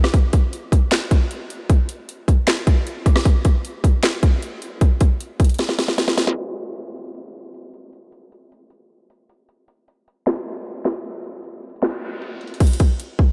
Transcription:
0.04 cross-stick loud
0.04 snare medium
0.14 kick loud
0.14 closed hi-hat medium
0.33 kick medium
0.33 closed hi-hat medium
0.53 closed hi-hat medium
0.72 kick loud
0.72 closed hi-hat medium
0.91 snare loud
0.91 clap loud
0.91 closed hi-hat medium
1.11 kick loud
1.11 closed hi-hat medium
1.31 closed hi-hat medium
1.50 closed hi-hat medium
1.70 kick loud
1.70 closed hi-hat medium
1.89 closed hi-hat medium
2.09 closed hi-hat medium
2.28 kick loud
2.28 closed hi-hat medium
2.47 snare loud
2.47 clap loud
2.47 closed hi-hat medium
2.67 kick loud
2.67 closed hi-hat medium
2.87 closed hi-hat medium
3.06 kick loud
3.06 cross-stick medium
3.06 closed hi-hat medium
3.16 cross-stick loud
3.16 snare medium
3.25 kick loud
3.25 closed hi-hat medium
3.45 kick medium
3.45 closed hi-hat medium
3.65 closed hi-hat medium
3.84 kick loud
3.84 closed hi-hat medium
4.03 snare loud
4.03 clap loud
4.03 closed hi-hat medium
4.23 kick loud
4.23 closed hi-hat medium
4.42 closed hi-hat medium
4.62 closed hi-hat medium
4.81 kick loud
4.81 closed hi-hat medium
5.01 kick medium
5.01 closed hi-hat medium
5.21 closed hi-hat medium
5.40 kick loud
5.40 closed hi-hat medium
5.44 closed hi-hat medium
5.49 closed hi-hat medium
5.54 closed hi-hat soft
5.59 snare medium
5.59 closed hi-hat medium
5.69 snare medium
5.79 snare medium
5.79 closed hi-hat medium
5.88 snare medium
5.98 snare loud
5.98 closed hi-hat medium
6.08 snare medium
6.18 snare loud
6.18 closed hi-hat medium
6.27 snare loud
6.56 closed hi-hat medium
6.76 closed hi-hat medium
6.96 closed hi-hat medium
7.14 closed hi-hat medium
7.54 closed hi-hat medium
7.74 closed hi-hat medium
7.93 closed hi-hat medium
8.12 closed hi-hat medium
8.32 closed hi-hat medium
8.52 closed hi-hat medium
8.70 closed hi-hat medium
9.10 closed hi-hat medium
9.29 closed hi-hat medium
9.49 closed hi-hat medium
9.68 closed hi-hat medium
9.88 closed hi-hat medium
10.08 closed hi-hat medium
10.26 snare loud
10.26 clap loud
10.26 closed hi-hat medium
10.66 closed hi-hat medium
10.85 snare medium
10.85 clap medium
10.85 closed hi-hat medium
11.05 closed hi-hat medium
11.24 closed hi-hat medium
11.44 closed hi-hat medium
11.63 closed hi-hat medium
11.70 closed hi-hat medium
11.76 closed hi-hat medium
11.83 snare loud
11.83 clap loud
12.22 closed hi-hat medium
12.41 closed hi-hat soft
12.47 closed hi-hat soft
12.54 closed hi-hat medium
12.60 kick loud
12.60 closed hi-hat medium
12.60 crash loud
12.67 closed hi-hat medium
12.73 closed hi-hat medium
12.80 kick medium
12.80 closed hi-hat medium
13.00 closed hi-hat medium
13.19 kick medium

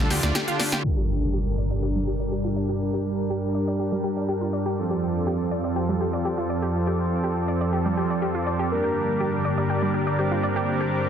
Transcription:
0.00 0.80 D3 medium
0.00 0.80 D4 medium
0.00 0.80 F4 medium
0.00 0.80 A4 medium
0.00 0.85 A4 medium
0.00 0.85 A5 medium
0.10 0.20 D2 loud
0.10 0.21 D3 medium
0.10 0.21 D4 medium
0.10 0.21 F4 medium
0.10 0.21 G4 medium
0.10 0.16 G4 medium
0.10 snare medium
0.10 open hi-hat loud
0.23 0.32 D2 medium
0.23 0.33 D3 medium
0.23 0.33 D4 medium
0.23 0.33 F4 medium
0.23 0.33 D5 medium
0.23 0.30 D5 medium
0.23 snare medium
0.23 closed hi-hat medium
0.35 0.40 G4 medium
0.35 snare medium
0.35 closed hi-hat medium
0.48 0.81 D3 medium
0.48 0.81 D4 medium
0.48 0.81 F4 medium
0.48 0.53 F4 medium
0.48 0.81 G4 loud
0.48 closed hi-hat soft
0.60 0.65 D5 medium
0.60 snare medium
0.60 open hi-hat loud
0.72 0.77 G4 loud
0.72 snare medium
0.84 4.74 G2 medium
0.84 4.75 G3 medium
0.84 4.74 G3 medium
0.84 4.74 D4 medium
0.84 4.75 D4 medium
0.84 4.75 G4 medium
0.84 4.74 A#4 medium
0.84 4.75 A#4 medium
0.84 11.09 D5 medium
0.84 11.09 D6 medium
0.84 impact medium
0.97 1.02 G4 medium
1.33 1.38 G4 medium
1.58 1.63 D5 medium
1.71 1.74 D5 medium
1.83 1.88 G4 medium
1.95 2.00 G3 medium
2.07 2.12 G4 medium
2.20 2.27 D5 medium
2.32 2.37 G4 medium
2.45 2.49 F4 medium
2.56 2.61 D5 medium
2.69 2.74 G4 loud
2.94 2.98 G4 medium
3.30 3.35 G4 medium
3.55 3.60 D5 medium
3.68 3.70 D5 medium
3.79 3.84 G4 medium
3.92 3.97 G3 medium
4.04 4.09 G4 medium
4.17 4.24 D5 medium
4.28 4.34 G4 medium
4.41 4.46 F4 medium
4.53 4.58 D5 medium
4.66 4.71 G4 loud
4.77 8.67 F2 medium
4.77 8.67 F3 medium
4.77 8.68 F3 medium
4.77 8.67 C4 medium
4.77 8.68 C4 medium
4.77 8.68 F4 medium
4.77 8.67 A4 medium
4.77 8.68 A4 medium
4.90 4.95 G4 medium
5.27 5.32 G4 medium
5.51 5.56 D5 medium
5.64 5.67 D5 medium
5.76 5.81 G4 medium
5.89 5.93 G3 medium
6.01 6.06 G4 medium
6.13 6.20 D5 medium
6.25 6.30 G4 medium
6.38 6.43 F4 medium
6.50 6.55 D5 medium
6.62 6.67 G4 loud
6.87 6.92 G4 medium
7.24 7.29 G4 medium
7.48 7.53 D5 medium
7.61 7.64 D5 medium
7.73 7.78 G4 medium
7.86 7.90 G3 medium
7.97 8.02 G4 medium
8.10 8.17 D5 medium
8.22 8.27 G4 medium
8.35 8.39 F4 medium
8.46 8.52 D5 medium
8.59 8.64 G4 loud
8.71 11.09 G2 medium
8.71 11.09 D3 medium
8.71 11.09 G3 medium
8.71 11.09 A#3 medium
8.71 11.09 D4 medium
8.71 11.09 G4 medium
8.71 9.35 A#4 loud
8.71 11.09 A#4 medium
8.84 8.89 G4 medium
9.20 9.25 G4 medium
9.45 9.50 D5 medium
9.58 9.60 D5 medium
9.70 9.75 G4 medium
9.82 9.87 G3 medium
9.94 9.99 G4 medium
10.07 10.14 D5 medium
10.19 10.24 G4 medium
10.19 11.09 C5 loud
10.31 10.36 F4 medium
10.43 10.48 D5 medium
10.56 10.61 G4 loud
10.81 10.85 G4 medium

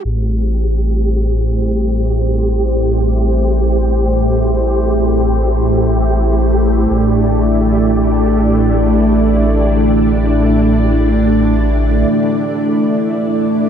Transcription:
0.04 6.86 A1 medium
0.04 13.69 A3 medium
0.04 13.69 E4 medium
0.04 6.86 G4 medium
0.04 12.05 G4 medium
0.04 6.86 C5 medium
6.90 12.05 A1 medium
6.90 13.69 D4 medium
6.90 13.69 D5 medium

